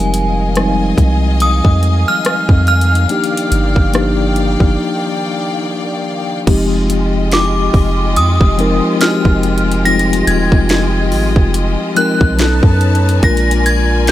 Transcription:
Already playing: 808-style bass F1, string section D#3 D#5 F5 G#5, tine electric piano F3 G3 G#3 C4 D#4 G4 A#4, synth bell G#5
0.00 closed hi-hat
0.14 closed hi-hat
0.55 tine electric piano F3 G3 G#3 C4 D#4, cross-stick, closed hi-hat
0.98 808-style bass C2, kick, closed hi-hat
1.40 synth bell D#6, closed hi-hat
1.65 808-style bass F2, kick
1.83 closed hi-hat
2.08 synth bell F6
2.25 cross-stick, closed hi-hat
2.49 808-style bass F2, kick
2.67 synth bell F6, closed hi-hat
2.81 closed hi-hat
2.95 closed hi-hat
3.08 tine electric piano F3 A#3 D4 D#4 G4, string section D5 G5, closed hi-hat
3.24 closed hi-hat
3.37 closed hi-hat
3.52 808-style bass G1, closed hi-hat
3.76 808-style bass G1, kick
3.93 tine electric piano F3 A#3 D4 D#4 G4, cross-stick, closed hi-hat
4.36 closed hi-hat
4.60 808-style bass G1, kick
6.47 808-style bass F1, tine electric piano F3 G#3 C4 D#4 G4, string section G#3 F4 G4 D#5, kick, closed hi-hat, crash
6.90 closed hi-hat
7.32 synth bell D6, snare, closed hi-hat
7.74 808-style bass F1, kick, open hi-hat
8.16 808-style bass F2, synth bell D#6, closed hi-hat
8.41 808-style bass F1, kick
8.58 tine electric piano F3 G#3 C4 D#4 A#4, closed hi-hat
9.01 tine electric piano G#3 C4 D#4 F#4, synth bell F6, snare, closed hi-hat
9.09 tine electric piano G4
9.25 808-style bass F1, kick
9.43 closed hi-hat, open hi-hat
9.58 closed hi-hat
9.72 closed hi-hat
9.85 tine electric piano F3 G3 C4 D#4 F4, string section D#5, synth bell A#6, closed hi-hat
9.92 tine electric piano G#3
9.99 closed hi-hat
10.13 closed hi-hat
10.27 808-style bass D#1, synth bell G#6, closed hi-hat
10.52 808-style bass F1, kick
10.69 snare, closed hi-hat
11.12 808-style bass G#1, open hi-hat
11.36 808-style bass F1, kick
11.54 closed hi-hat
11.95 tine electric piano F3 G#3 C4 D#4 A#4, synth bell F#6, closed hi-hat
12.21 808-style bass B1, kick
12.37 tine electric piano F#3 B3 C#4 D#4 A4, string section D#4 B4 C#5 A5, snare, closed hi-hat
12.63 808-style bass F#2, kick
12.81 closed hi-hat, open hi-hat
12.95 closed hi-hat
13.09 closed hi-hat
13.22 808-style bass A#1, tine electric piano G#3 A#3 D4 F4 A#4, string section F4 A#4 D5 G#5, synth bell A#6, kick, closed hi-hat
13.37 closed hi-hat
13.51 closed hi-hat
13.66 synth bell G#6, closed hi-hat
14.07 closed hi-hat

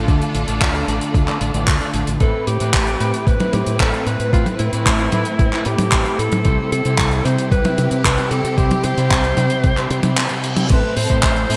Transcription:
Already playing: string section D3 D4 F4 A4
0.08 fingered electric bass D2, clean electric guitar D3 A3 D4 F4 D5, kick, closed hi-hat
0.22 closed hi-hat
0.35 fingered electric bass A1, closed hi-hat
0.47 fingered electric bass A1, clean electric guitar D3 A3 D4 F4 D5, closed hi-hat
0.61 fingered electric bass D2, kick, clap, closed hi-hat
0.74 closed hi-hat
0.87 fingered electric bass A1, clean electric guitar D3 A3 D4 F4 D5, closed hi-hat
1.01 closed hi-hat
1.14 fingered electric bass D2, kick, closed hi-hat
1.27 clean electric guitar D3 A3 D4 F4 D5, clap, closed hi-hat
1.41 fingered electric bass A1, clean electric guitar D3 A3 D4 F4 D5, closed hi-hat
1.54 fingered electric bass A1, clean electric guitar D3 A3 D4 F4 D5, closed hi-hat
1.68 fingered electric bass D2, kick, clap, closed hi-hat
1.81 clean electric guitar D3 A3 D4 F4 D5, closed hi-hat
1.94 fingered electric bass A1, closed hi-hat
2.07 fingered electric bass A1, closed hi-hat
2.20 fingered electric bass A1, clean electric guitar A2 A3 C4 E4 B4, string section A3 C4 E4 B4, alto saxophone A4, kick, closed hi-hat
2.47 fingered electric bass A2, alto saxophone G4, closed hi-hat
2.60 clean electric guitar A2 A3 C4 E4 B4, fingered electric bass A2, closed hi-hat
2.74 fingered electric bass A1, kick, clap, closed hi-hat
2.87 closed hi-hat
3.00 clean electric guitar A2 A3 C4 E4 B4, fingered electric bass A2, closed hi-hat
3.14 closed hi-hat
3.27 fingered electric bass A1, alto saxophone B4, kick, closed hi-hat
3.40 clean electric guitar A2 A3 C4 E4 B4, closed hi-hat, high tom
3.53 fingered electric bass A2, alto saxophone G4, closed hi-hat, high tom
3.66 fingered electric bass A2, closed hi-hat
3.80 fingered electric bass A1, clean electric guitar A2 A3 C4 E4 B4, alto saxophone A4, kick, clap, closed hi-hat
3.94 closed hi-hat
4.06 fingered electric bass A2, alto saxophone B4, closed hi-hat
4.20 fingered electric bass A2, closed hi-hat
4.33 fingered electric bass A1, clean electric guitar A2 A3 C4 E4 B4, alto saxophone F4, kick, closed hi-hat
4.46 closed hi-hat, high tom
4.59 fingered electric bass A2, alto saxophone E4, closed hi-hat
4.72 clean electric guitar A2 A3 C4 E4 B4, fingered electric bass A2, closed hi-hat
4.86 fingered electric bass A1, kick, clap, closed hi-hat
4.99 closed hi-hat
5.12 clean electric guitar A2 A3 C4 E4 B4, fingered electric bass A2, closed hi-hat, high tom
5.25 closed hi-hat
5.39 fingered electric bass A1, kick, closed hi-hat
5.52 clean electric guitar A2 A3 C4 E4 B4, clap, closed hi-hat
5.65 fingered electric bass A2, alto saxophone G4, closed hi-hat
5.78 fingered electric bass A2, closed hi-hat, high tom
5.92 fingered electric bass A1, clean electric guitar A2 A3 C4 E4 B4, kick, clap, closed hi-hat
6.05 closed hi-hat
6.19 fingered electric bass A2, alto saxophone A4, closed hi-hat
6.32 fingered electric bass A2, closed hi-hat, high tom
6.45 fingered electric bass C2, clean electric guitar C3 G3 C4 E4 C5, string section C4 G4, kick, closed hi-hat
6.72 fingered electric bass C3, alto saxophone A4, closed hi-hat
6.85 clean electric guitar C3 G3 C4 E4 C5, fingered electric bass C3, closed hi-hat
6.98 fingered electric bass C2, kick, clap, closed hi-hat
7.11 closed hi-hat
7.25 clean electric guitar C3 G3 C4 E4 C5, fingered electric bass C3, alto saxophone C5, closed hi-hat
7.38 closed hi-hat
7.52 fingered electric bass C2, alto saxophone B4, kick, closed hi-hat
7.65 clean electric guitar C3 G3 C4 E4 E5, closed hi-hat, high tom
7.78 fingered electric bass C3, closed hi-hat, high tom
7.91 fingered electric bass C3, closed hi-hat
8.04 fingered electric bass C2, clean electric guitar C3 G3 C4 E4 C5, alto saxophone B4, kick, clap, closed hi-hat
8.18 closed hi-hat
8.31 fingered electric bass C3, alto saxophone A4, closed hi-hat
8.44 fingered electric bass C3, closed hi-hat
8.57 fingered electric bass C2, clean electric guitar C3 G3 C4 E4 C5, alto saxophone G4, kick, closed hi-hat
8.71 closed hi-hat, high tom
8.84 fingered electric bass C3, alto saxophone C5, closed hi-hat
8.97 clean electric guitar C3 G3 C4 E4 C5, fingered electric bass C3, closed hi-hat
9.11 fingered electric bass C2, kick, clap, closed hi-hat
9.24 closed hi-hat
9.37 clean electric guitar C3 G3 C4 E4 C5, fingered electric bass C3, closed hi-hat, high tom
9.50 closed hi-hat
9.64 fingered electric bass C2, kick, closed hi-hat, reverse cymbal
9.76 clean electric guitar C3 G3 C4 E4 C5, clap, closed hi-hat
9.90 clean electric guitar C3 G3 C4 E4 C5, fingered electric bass C3, closed hi-hat
10.03 clean electric guitar C3 G3 C4 E4 C5, fingered electric bass C3, closed hi-hat, high tom
10.17 clap, closed hi-hat
10.29 clean electric guitar C3 G3 C4 E4 C5, closed hi-hat
10.44 closed hi-hat
10.57 closed hi-hat, high tom
10.69 fingered electric bass A1, clean electric guitar A2 A3 C4 E4 C5, string section C4 E4 A4, alto saxophone B4, kick, closed hi-hat, crash
10.97 fingered electric bass A2, alto saxophone C5, open hi-hat
11.10 clean electric guitar A2 A3 C4 E4 C5, fingered electric bass A2, kick, closed hi-hat
11.23 fingered electric bass A1, kick, clap, closed hi-hat
11.36 closed hi-hat
11.49 clean electric guitar A2 A3 C4 E4 C5, fingered electric bass A2, open hi-hat

